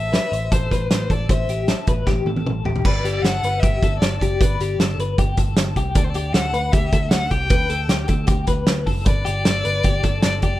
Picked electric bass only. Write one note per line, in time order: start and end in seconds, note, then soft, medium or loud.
0.00 0.17 A1 medium
0.32 0.48 A1 loud
0.52 0.68 A1 medium
0.72 0.87 A1 medium
0.91 1.07 A1 medium
1.10 1.26 A1 medium
1.29 1.45 A1 medium
1.48 1.72 A1 medium
1.88 2.04 A1 loud
2.06 2.23 A1 medium
2.25 2.42 A1 medium
2.46 2.62 A1 medium
2.64 2.80 A1 medium
2.85 3.01 G1 medium
3.03 3.20 G1 medium
3.22 3.39 G1 loud
3.43 3.59 G1 medium
3.63 3.79 G1 loud
3.83 3.98 G1 medium
4.02 4.18 G1 medium
4.21 4.37 F#1 medium
4.41 4.57 G1 medium
4.60 4.76 G1 medium
4.79 4.95 G1 loud
4.98 5.14 G1 medium
5.18 5.34 G1 loud
5.38 5.54 G1 medium
5.57 5.73 G1 loud
5.76 5.92 C2 medium
5.95 6.12 D2 loud
6.14 6.31 D2 loud
6.33 6.50 D2 loud
6.53 6.69 D2 loud
6.73 6.89 D2 loud
6.93 7.09 D2 medium
7.11 7.28 D2 medium
7.31 7.47 C2 loud
7.51 7.67 D2 loud
7.70 7.86 D2 medium
7.89 8.05 D2 loud
8.09 8.25 D2 medium
8.28 8.44 D2 loud
8.47 8.64 D2 medium
8.67 8.83 D2 medium
8.87 9.03 F#1 medium
9.06 9.22 G1 medium
9.27 9.43 G1 medium
9.46 9.62 G1 loud
9.65 9.81 G1 medium
9.84 10.00 G1 medium
10.04 10.20 G1 medium
10.25 10.40 G1 medium
10.43 10.59 F#1 loud